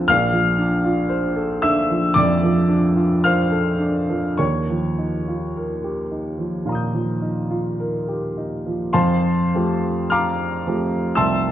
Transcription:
0.00 0.11 A2 soft
0.00 0.11 F3 soft
0.00 0.11 C4 soft
0.00 0.11 D4 medium
0.00 0.11 F4 soft
0.00 0.10 A4 medium
0.00 0.10 A5 medium
0.08 2.10 A#1 medium
0.08 1.58 F5 medium
0.08 1.61 F6 loud
0.33 0.73 F3 soft
0.59 0.99 D4 soft
0.84 1.25 F4 medium
1.09 1.51 C5 medium
1.36 1.77 A4 soft
1.62 2.05 D4 soft
1.62 2.11 E5 medium
1.62 2.14 E6 loud
1.90 2.31 F3 soft
2.14 2.57 F2 medium
2.14 3.19 D5 medium
2.14 3.23 D6 loud
2.43 2.85 F3 medium
2.69 3.12 D4 soft
2.96 3.40 F4 soft
3.24 3.69 C5 medium
3.24 4.35 F5 medium
3.24 4.39 F6 loud
3.51 3.97 A4 soft
3.79 4.26 D4 soft
4.09 4.38 F3 soft
4.37 6.62 D#2 medium
4.37 8.32 C#5 medium
4.37 8.35 C#6 medium
4.69 5.15 F3 soft
4.98 5.43 D#4 soft
5.28 5.72 F4 soft
5.57 6.00 A#4 soft
5.84 6.28 G4 soft
6.12 6.55 D#4 soft
6.39 6.83 F3 soft
6.66 7.10 A#2 soft
6.66 8.89 F5 soft
6.66 8.90 A#5 soft
6.72 8.92 D#6 soft
6.72 8.93 G6 soft
6.94 7.39 F3 soft
7.22 7.67 D#4 soft
7.50 7.95 F4 soft
7.80 8.25 A#4 soft
8.08 8.54 G4 soft
8.38 8.83 D#4 soft
8.66 8.94 F3 soft
8.93 9.50 F2 medium
8.93 10.07 C5 medium
8.93 10.07 F5 medium
8.93 10.07 A5 medium
8.93 10.11 C6 medium
9.54 10.62 F3 soft
9.54 10.62 A3 soft
9.54 10.62 C4 soft
9.54 10.62 G4 soft
10.10 11.12 F5 medium
10.10 11.12 A#5 medium
10.10 11.12 D6 medium
10.10 11.15 F6 medium
10.66 11.13 F3 soft
10.66 11.13 A3 soft
10.66 11.13 C4 soft
10.66 11.13 G4 soft
11.15 11.52 C2 soft
11.15 11.52 E5 medium
11.15 11.52 A5 medium
11.15 11.52 C6 medium
11.15 11.52 E6 medium

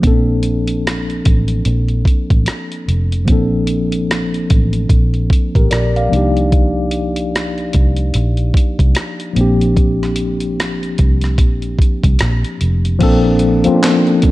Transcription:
0.00 1.21 A#1 medium
0.00 3.22 F3 medium
0.00 3.23 A#3 medium
0.00 3.24 C4 medium
0.00 kick medium
0.00 closed hi-hat soft
0.05 0.12 C#4 soft
0.05 3.26 A4 medium
0.12 3.28 D4 medium
0.43 closed hi-hat medium
0.67 closed hi-hat soft
0.87 cross-stick loud
0.87 closed hi-hat medium
1.10 closed hi-hat soft
1.25 1.63 A1 medium
1.25 kick medium
1.25 closed hi-hat medium
1.48 closed hi-hat soft
1.65 2.02 A#1 medium
1.65 closed hi-hat medium
1.88 closed hi-hat soft
2.05 kick medium
2.05 closed hi-hat soft
2.30 2.46 A1 medium
2.30 kick medium
2.30 closed hi-hat soft
2.46 cross-stick medium
2.46 closed hi-hat medium
2.72 closed hi-hat soft
2.88 3.29 F1 medium
2.88 closed hi-hat soft
3.12 closed hi-hat soft
3.25 4.46 A#1 medium
3.25 6.06 F3 medium
3.25 6.07 A#3 medium
3.25 6.08 C4 medium
3.25 kick medium
3.25 closed hi-hat medium
3.30 6.09 D4 medium
3.30 5.29 A4 medium
3.67 closed hi-hat medium
3.92 closed hi-hat soft
4.11 cross-stick medium
4.11 closed hi-hat medium
4.34 closed hi-hat soft
4.50 4.87 A1 medium
4.50 kick medium
4.50 closed hi-hat medium
4.73 closed hi-hat soft
4.89 5.27 A#1 medium
4.89 kick medium
4.89 closed hi-hat medium
5.14 closed hi-hat soft
5.30 kick medium
5.30 closed hi-hat medium
5.55 5.70 A1 medium
5.55 5.71 G4 soft
5.55 5.70 A#4 medium
5.55 kick medium
5.55 closed hi-hat soft
5.71 6.08 A#1 medium
5.71 5.95 A#4 soft
5.71 5.94 D5 medium
5.71 cross-stick medium
5.71 closed hi-hat medium
5.96 6.35 D5 soft
5.96 6.34 F5 medium
5.96 closed hi-hat soft
6.09 7.70 C2 medium
6.09 9.31 F3 medium
6.09 9.31 A#3 medium
6.09 9.32 D4 medium
6.13 9.33 D#4 medium
6.13 9.34 G4 medium
6.13 closed hi-hat soft
6.37 closed hi-hat soft
6.52 kick medium
6.52 closed hi-hat soft
6.91 closed hi-hat medium
7.16 closed hi-hat soft
7.36 cross-stick medium
7.36 closed hi-hat medium
7.58 closed hi-hat soft
7.73 8.11 C2 medium
7.73 kick medium
7.73 closed hi-hat medium
7.96 closed hi-hat soft
8.14 8.51 A#1 medium
8.14 closed hi-hat medium
8.37 closed hi-hat soft
8.54 kick medium
8.54 closed hi-hat medium
8.79 8.94 C2 medium
8.79 kick medium
8.79 closed hi-hat soft
8.95 cross-stick medium
8.95 closed hi-hat medium
9.20 closed hi-hat soft
9.33 10.94 A#1 medium
9.33 12.55 F3 medium
9.33 12.56 A#3 medium
9.33 12.57 C4 medium
9.33 closed hi-hat medium
9.39 12.58 D4 medium
9.39 12.59 G4 medium
9.61 closed hi-hat soft
9.77 kick medium
9.77 closed hi-hat soft
10.03 cross-stick soft
10.03 closed hi-hat soft
10.16 closed hi-hat medium
10.40 closed hi-hat soft
10.60 cross-stick loud
10.60 closed hi-hat medium
10.83 closed hi-hat soft
10.98 11.39 C2 medium
10.98 kick medium
10.98 closed hi-hat medium
11.21 cross-stick soft
11.21 closed hi-hat soft
11.38 11.76 A#1 medium
11.38 kick medium
11.38 closed hi-hat medium
11.62 closed hi-hat soft
11.79 kick medium
11.79 closed hi-hat medium
12.04 12.19 C2 medium
12.04 kick medium
12.04 closed hi-hat soft
12.19 12.42 A#1 medium
12.19 cross-stick medium
12.19 closed hi-hat medium
12.45 closed hi-hat soft
12.61 12.98 F1 medium
12.61 closed hi-hat medium
12.85 closed hi-hat soft
12.99 13.62 A#1 loud
12.99 13.60 F3 loud
12.99 13.60 A#3 loud
12.99 13.61 C4 loud
12.99 13.61 D4 medium
12.99 kick loud
12.99 closed hi-hat medium
12.99 crash medium
13.03 13.62 A4 loud
13.39 closed hi-hat medium
13.64 14.31 F3 medium
13.64 14.31 A#3 medium
13.64 14.31 C4 medium
13.64 13.72 C#4 medium
13.64 14.31 F4 medium
13.64 muted fingered electric bass stroke soft
13.64 closed hi-hat medium
13.74 14.31 D4 medium
13.83 snare loud
13.83 clap medium
13.83 closed hi-hat medium
14.07 closed hi-hat soft
14.22 kick loud
14.22 closed hi-hat medium

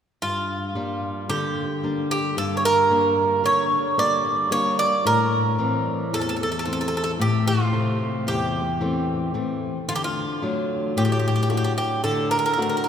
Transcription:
0.22 1.26 G2 medium
0.22 1.29 F4 medium
0.75 1.61 G3 soft
0.75 1.61 A#3 soft
0.75 1.62 D4 soft
1.29 2.33 D3 medium
1.29 2.10 G4 medium
1.83 2.69 G3 soft
1.83 2.69 A#3 soft
1.83 2.70 D4 soft
2.11 2.35 G4 medium
2.37 3.41 G2 medium
2.37 2.56 A4 medium
2.57 2.64 C#5 medium
2.65 3.41 A#4 medium
2.90 3.76 G3 soft
2.90 3.77 A#3 soft
2.90 3.77 D4 soft
3.44 4.48 D3 medium
3.44 3.99 C#5 medium
3.98 4.49 G3 soft
3.98 4.50 A#3 soft
3.98 4.51 D4 soft
3.98 4.48 D5 medium
4.51 4.94 G3 soft
4.51 4.94 A#3 soft
4.51 4.95 D4 medium
4.51 4.79 C#5 medium
4.79 5.06 D5 medium
5.05 6.09 A2 medium
5.05 6.14 A#4 medium
5.59 6.45 E3 soft
5.59 6.45 C4 medium
6.13 7.17 E2 medium
6.13 6.20 A4 medium
6.21 6.28 A4 medium
6.29 6.35 A4 medium
6.36 6.42 A4 soft
6.43 6.51 A4 medium
6.52 6.58 A4 soft
6.59 6.64 A4 medium
6.65 7.52 E3 soft
6.65 7.52 A3 soft
6.65 7.53 C4 medium
6.65 6.72 A4 soft
6.73 6.80 A4 medium
6.81 6.87 A4 medium
6.88 6.96 A4 medium
6.97 7.03 A4 medium
7.04 7.11 A4 medium
7.19 8.24 A2 medium
7.19 7.47 G4 medium
7.48 8.30 F4 medium
7.73 8.59 C3 soft
7.73 8.59 A3 soft
7.73 8.60 C4 medium
8.27 9.31 E2 medium
8.27 9.88 G4 medium
8.81 9.33 E3 soft
8.81 9.33 A3 soft
8.81 9.34 C4 soft
9.34 9.77 E3 soft
9.34 9.78 A3 soft
9.34 9.78 C4 soft
9.88 10.93 D3 medium
9.88 9.95 F4 medium
9.96 10.03 G4 medium
10.04 10.93 F4 medium
10.42 11.29 F#3 medium
10.42 11.28 A3 soft
10.42 11.28 D4 soft
10.97 12.01 A2 medium
10.97 11.04 G4 medium
11.05 11.11 G4 soft
11.12 11.18 G4 medium
11.19 11.26 G4 soft
11.28 11.35 G4 medium
11.36 11.41 G4 soft
11.43 11.49 G4 medium
11.50 12.36 A3 soft
11.50 12.36 D4 soft
11.50 12.36 F#4 soft
11.50 11.56 G4 soft
11.57 11.63 G4 medium
11.64 11.72 G4 medium
11.78 12.02 G4 medium
12.04 12.88 D3 medium
12.04 12.29 A4 medium
12.31 12.38 A#4 medium
12.39 12.45 A#4 medium
12.46 12.52 A#4 medium
12.54 12.60 A#4 medium
12.58 12.88 A3 soft
12.58 12.88 D4 soft
12.58 12.88 F#4 soft
12.62 12.68 A#4 medium
12.69 12.76 A#4 soft
12.77 12.83 A#4 medium
12.84 12.88 A#4 medium

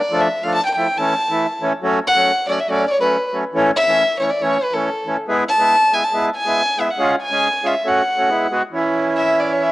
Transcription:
0.00 0.22 D5 medium
0.11 0.27 F3 medium
0.11 0.28 A3 medium
0.11 0.28 D4 medium
0.21 0.45 E5 medium
0.43 0.60 F3 medium
0.43 0.60 A3 medium
0.43 0.61 D4 medium
0.43 0.54 F5 medium
0.54 0.64 A5 medium
0.65 0.75 G5 medium
0.75 0.87 F3 medium
0.75 0.87 A3 medium
0.75 0.88 E4 medium
0.75 0.99 G5 medium
0.98 1.14 E3 medium
0.98 1.14 A3 medium
0.98 1.15 C#4 medium
0.98 1.62 A5 medium
1.30 1.46 E3 medium
1.30 1.46 A3 medium
1.30 1.47 E4 medium
1.61 1.72 E3 medium
1.61 1.73 A3 medium
1.61 1.73 C#4 medium
1.82 1.99 F#3 medium
1.82 1.99 A3 medium
1.82 2.00 C#4 medium
2.07 2.46 F#5 loud
2.14 2.31 F#3 medium
2.14 2.31 A3 medium
2.14 2.32 C#4 medium
2.47 2.58 F#3 medium
2.47 2.58 A3 medium
2.47 2.59 C#4 medium
2.47 2.61 D5 medium
2.60 2.71 E5 medium
2.68 2.85 F#3 medium
2.68 2.85 A3 medium
2.68 2.86 C#4 medium
2.68 2.87 D5 loud
2.88 3.00 C#5 medium
2.88 2.92 D5 soft
3.00 3.17 F#3 medium
3.00 3.17 A3 medium
3.00 3.17 C#4 medium
3.00 3.31 B4 medium
3.32 3.44 F#3 medium
3.32 3.44 A3 soft
3.32 3.44 C#4 medium
3.54 3.70 E3 medium
3.54 3.71 A3 medium
3.54 3.71 C#4 loud
3.76 4.16 E5 loud
3.87 4.03 E3 medium
3.87 4.03 A3 soft
3.87 4.04 C#4 medium
4.19 4.30 E3 medium
4.19 4.30 A3 medium
4.19 4.31 C#4 medium
4.19 4.31 C#5 medium
4.30 4.43 D5 medium
4.41 4.57 E3 medium
4.41 4.57 A3 medium
4.41 4.58 C#4 medium
4.41 4.65 C#5 loud
4.63 4.75 B4 medium
4.73 4.89 E3 medium
4.73 4.89 A3 soft
4.73 4.90 C#4 medium
4.73 5.05 A4 medium
5.06 5.16 E3 medium
5.06 5.17 A3 soft
5.06 5.17 C#4 medium
5.28 5.44 G#3 medium
5.28 5.44 B3 medium
5.28 5.44 E4 loud
5.48 5.95 A5 loud
5.58 5.75 G#3 soft
5.58 5.75 B3 soft
5.58 5.76 E4 medium
5.92 6.02 G#3 medium
5.92 6.03 B3 medium
5.92 6.03 E4 medium
5.92 6.05 G#5 loud
6.04 6.25 A5 loud
6.12 6.29 G#3 medium
6.12 6.30 B3 medium
6.12 6.30 E4 medium
6.36 6.82 G#5 loud
6.45 6.61 G#3 medium
6.45 6.62 B3 medium
6.45 6.62 E4 medium
6.78 6.89 G#3 soft
6.78 6.89 B3 soft
6.78 6.89 E4 medium
6.78 6.92 E5 medium
6.90 7.11 F#5 medium
6.98 7.15 G#3 medium
6.98 7.16 C#4 medium
6.98 7.16 F4 medium
7.22 7.68 G#5 loud
7.31 7.48 G#3 medium
7.31 7.48 C#4 soft
7.31 7.49 G#4 medium
7.63 7.75 G#3 medium
7.63 7.75 C#4 medium
7.63 7.75 F4 medium
7.63 7.89 E5 medium
7.85 8.02 A3 medium
7.85 8.02 C#4 medium
7.85 8.03 F#4 medium
7.85 8.52 F#5 medium
8.17 8.29 A3 medium
8.17 8.29 C#4 soft
8.17 8.30 F#4 medium
8.28 8.46 G#3 medium
8.28 8.47 B3 medium
8.28 8.47 E4 medium
8.50 8.62 G#3 medium
8.50 8.62 B3 medium
8.50 8.63 F#4 medium
8.72 9.72 E3 medium
8.72 9.72 C#4 medium
8.72 9.72 E4 medium
9.17 9.41 E5 medium
9.39 9.53 D5 medium
9.52 9.64 C#5 medium
9.62 9.72 E5 medium

